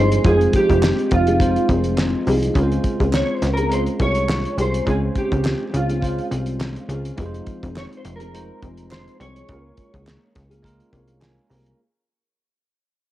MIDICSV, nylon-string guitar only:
0, 0, Header, 1, 2, 480
1, 0, Start_track
1, 0, Tempo, 577478
1, 201, Time_signature, 4, 2, 24, 8
1, 10900, End_track
2, 0, Start_track
2, 0, Title_t, "Nylon-string guitar"
2, 0, Program_c, 0, 24
2, 0, Note_on_c, 0, 53, 66
2, 0, Note_on_c, 0, 60, 59
2, 0, Note_on_c, 0, 63, 58
2, 0, Note_on_c, 0, 68, 70
2, 196, Note_off_c, 0, 53, 0
2, 201, Note_off_c, 0, 60, 0
2, 206, Note_on_c, 0, 53, 62
2, 207, Note_off_c, 0, 63, 0
2, 210, Note_off_c, 0, 68, 0
2, 211, Note_on_c, 0, 60, 63
2, 217, Note_on_c, 0, 63, 59
2, 226, Note_on_c, 0, 68, 64
2, 575, Note_off_c, 0, 63, 0
2, 577, Note_off_c, 0, 53, 0
2, 579, Note_off_c, 0, 60, 0
2, 585, Note_on_c, 0, 63, 46
2, 586, Note_off_c, 0, 68, 0
2, 594, Note_on_c, 0, 60, 41
2, 1057, Note_off_c, 0, 63, 0
2, 1057, Note_on_c, 0, 68, 55
2, 1067, Note_on_c, 0, 63, 46
2, 1071, Note_off_c, 0, 60, 0
2, 1074, Note_on_c, 0, 60, 40
2, 1404, Note_off_c, 0, 68, 0
2, 1406, Note_off_c, 0, 60, 0
2, 1409, Note_off_c, 0, 63, 0
2, 1409, Note_on_c, 0, 53, 55
2, 1416, Note_on_c, 0, 60, 60
2, 1420, Note_on_c, 0, 63, 60
2, 1427, Note_on_c, 0, 68, 61
2, 1878, Note_off_c, 0, 53, 0
2, 1881, Note_on_c, 0, 53, 65
2, 1884, Note_off_c, 0, 60, 0
2, 1885, Note_off_c, 0, 63, 0
2, 1887, Note_on_c, 0, 60, 62
2, 1895, Note_on_c, 0, 63, 64
2, 1897, Note_off_c, 0, 68, 0
2, 1900, Note_on_c, 0, 68, 73
2, 2117, Note_off_c, 0, 60, 0
2, 2118, Note_on_c, 0, 49, 70
2, 2123, Note_off_c, 0, 53, 0
2, 2127, Note_on_c, 0, 60, 66
2, 2128, Note_off_c, 0, 63, 0
2, 2129, Note_off_c, 0, 68, 0
2, 2131, Note_on_c, 0, 65, 76
2, 2139, Note_on_c, 0, 68, 79
2, 2483, Note_off_c, 0, 68, 0
2, 2493, Note_off_c, 0, 65, 0
2, 2493, Note_on_c, 0, 68, 51
2, 2494, Note_off_c, 0, 49, 0
2, 2498, Note_off_c, 0, 60, 0
2, 2503, Note_on_c, 0, 65, 49
2, 2508, Note_on_c, 0, 60, 41
2, 2970, Note_off_c, 0, 68, 0
2, 2974, Note_on_c, 0, 68, 51
2, 2982, Note_off_c, 0, 65, 0
2, 2985, Note_on_c, 0, 65, 47
2, 2988, Note_off_c, 0, 60, 0
2, 2992, Note_on_c, 0, 60, 48
2, 3317, Note_off_c, 0, 65, 0
2, 3322, Note_off_c, 0, 68, 0
2, 3327, Note_on_c, 0, 65, 57
2, 3332, Note_on_c, 0, 68, 64
2, 3333, Note_off_c, 0, 60, 0
2, 3801, Note_on_c, 0, 49, 59
2, 3809, Note_on_c, 0, 60, 58
2, 3813, Note_off_c, 0, 65, 0
2, 3816, Note_on_c, 0, 65, 60
2, 3818, Note_off_c, 0, 68, 0
2, 3821, Note_on_c, 0, 68, 67
2, 4025, Note_off_c, 0, 49, 0
2, 4035, Note_on_c, 0, 49, 61
2, 4039, Note_off_c, 0, 60, 0
2, 4041, Note_off_c, 0, 65, 0
2, 4044, Note_off_c, 0, 68, 0
2, 4049, Note_on_c, 0, 60, 67
2, 4051, Note_on_c, 0, 65, 62
2, 4054, Note_on_c, 0, 68, 70
2, 4413, Note_off_c, 0, 49, 0
2, 4415, Note_off_c, 0, 65, 0
2, 4420, Note_off_c, 0, 60, 0
2, 4422, Note_off_c, 0, 68, 0
2, 4425, Note_on_c, 0, 65, 51
2, 4438, Note_on_c, 0, 60, 41
2, 4906, Note_on_c, 0, 68, 56
2, 4914, Note_off_c, 0, 65, 0
2, 4918, Note_on_c, 0, 65, 50
2, 4919, Note_off_c, 0, 60, 0
2, 4922, Note_on_c, 0, 60, 47
2, 5241, Note_off_c, 0, 60, 0
2, 5250, Note_off_c, 0, 65, 0
2, 5250, Note_off_c, 0, 68, 0
2, 5251, Note_on_c, 0, 60, 60
2, 5260, Note_on_c, 0, 65, 66
2, 5263, Note_on_c, 0, 68, 55
2, 5729, Note_off_c, 0, 60, 0
2, 5729, Note_on_c, 0, 49, 65
2, 5733, Note_on_c, 0, 60, 74
2, 5736, Note_off_c, 0, 65, 0
2, 5739, Note_on_c, 0, 65, 77
2, 5741, Note_off_c, 0, 68, 0
2, 5744, Note_on_c, 0, 68, 74
2, 5968, Note_off_c, 0, 49, 0
2, 5970, Note_off_c, 0, 60, 0
2, 5973, Note_off_c, 0, 65, 0
2, 5974, Note_on_c, 0, 53, 65
2, 5975, Note_off_c, 0, 68, 0
2, 5982, Note_on_c, 0, 60, 65
2, 5988, Note_on_c, 0, 68, 70
2, 5989, Note_on_c, 0, 63, 68
2, 6330, Note_off_c, 0, 68, 0
2, 6340, Note_off_c, 0, 63, 0
2, 6340, Note_on_c, 0, 68, 51
2, 6342, Note_off_c, 0, 53, 0
2, 6346, Note_off_c, 0, 60, 0
2, 6350, Note_on_c, 0, 63, 51
2, 6359, Note_on_c, 0, 60, 47
2, 6810, Note_off_c, 0, 68, 0
2, 6813, Note_on_c, 0, 68, 54
2, 6815, Note_off_c, 0, 63, 0
2, 6823, Note_off_c, 0, 60, 0
2, 6825, Note_on_c, 0, 63, 47
2, 6833, Note_on_c, 0, 60, 42
2, 7160, Note_off_c, 0, 60, 0
2, 7163, Note_off_c, 0, 68, 0
2, 7163, Note_on_c, 0, 53, 58
2, 7169, Note_off_c, 0, 63, 0
2, 7170, Note_on_c, 0, 60, 59
2, 7178, Note_on_c, 0, 63, 60
2, 7180, Note_on_c, 0, 68, 60
2, 7640, Note_off_c, 0, 60, 0
2, 7643, Note_off_c, 0, 53, 0
2, 7646, Note_on_c, 0, 53, 58
2, 7647, Note_off_c, 0, 63, 0
2, 7650, Note_on_c, 0, 60, 64
2, 7657, Note_on_c, 0, 63, 59
2, 7658, Note_off_c, 0, 68, 0
2, 7661, Note_on_c, 0, 68, 71
2, 7886, Note_off_c, 0, 53, 0
2, 7888, Note_off_c, 0, 60, 0
2, 7888, Note_on_c, 0, 49, 61
2, 7891, Note_off_c, 0, 63, 0
2, 7893, Note_off_c, 0, 68, 0
2, 7895, Note_on_c, 0, 58, 63
2, 7904, Note_on_c, 0, 65, 75
2, 7908, Note_on_c, 0, 68, 64
2, 8244, Note_off_c, 0, 68, 0
2, 8254, Note_off_c, 0, 65, 0
2, 8254, Note_on_c, 0, 68, 56
2, 8258, Note_off_c, 0, 49, 0
2, 8261, Note_off_c, 0, 58, 0
2, 8264, Note_on_c, 0, 65, 59
2, 8274, Note_on_c, 0, 58, 50
2, 8725, Note_off_c, 0, 68, 0
2, 8728, Note_on_c, 0, 68, 59
2, 8731, Note_off_c, 0, 65, 0
2, 8734, Note_on_c, 0, 65, 60
2, 8743, Note_off_c, 0, 58, 0
2, 8746, Note_on_c, 0, 58, 55
2, 9073, Note_off_c, 0, 58, 0
2, 9079, Note_off_c, 0, 68, 0
2, 9080, Note_off_c, 0, 65, 0
2, 9083, Note_on_c, 0, 58, 61
2, 9090, Note_on_c, 0, 65, 72
2, 9093, Note_on_c, 0, 68, 63
2, 9557, Note_on_c, 0, 49, 66
2, 9562, Note_off_c, 0, 58, 0
2, 9564, Note_off_c, 0, 65, 0
2, 9565, Note_on_c, 0, 58, 72
2, 9567, Note_on_c, 0, 65, 75
2, 9568, Note_off_c, 0, 68, 0
2, 9572, Note_on_c, 0, 68, 77
2, 9799, Note_off_c, 0, 49, 0
2, 9803, Note_off_c, 0, 58, 0
2, 9804, Note_off_c, 0, 65, 0
2, 9807, Note_off_c, 0, 68, 0
2, 10900, End_track
0, 0, End_of_file